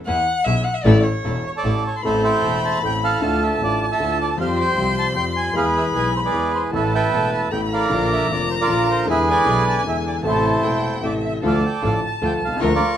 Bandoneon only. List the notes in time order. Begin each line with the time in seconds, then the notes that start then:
1.47 C#5
1.56 A4 D5
1.87 C#5
2.05 A4 C5 E5
2.24 C5 E5 G5
2.65 A5
2.86 G5
3.04 A4 F5
3.43 E5
3.64 D5
3.82 D5
3.92 A4 E5
4.22 D5
4.40 C5 F5
4.60 C5 G5
4.99 A5
5.16 G5
5.37 G#5
5.56 G#4 B4 F5
5.77 E5
5.96 G#5
6.16 C5
6.25 G#4 B4 D5
6.55 C5
6.75 A4 B4 E5
6.95 B4 E5 G5
7.34 A5
7.52 G5
7.73 A#4 D5 F5
8.13 E5
8.32 D5
8.51 C5
8.61 F4 A#4 D5
8.91 C5
9.10 G#4 B4 E5
9.30 B4 D5 G#5
9.69 A5
9.78 G#5
9.89 E5
10.07 D5
10.28 E4 A4 C5
11.05 D5
11.25 E5
11.46 A4 D5 F5
11.66 G5
11.86 F5
12.06 A5
12.25 G5
12.45 F5
12.63 A#4 E5
12.75 F4 A#4 D5